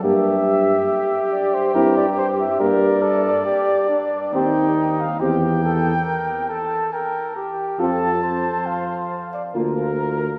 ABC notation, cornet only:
X:1
M:3/4
L:1/16
Q:1/4=70
K:Gdor
V:1 name="Cornet"
e6 d c B d c e | [K:Cdor] d8 g3 f | g6 a2 g2 z2 | a4 f3 d B4 |]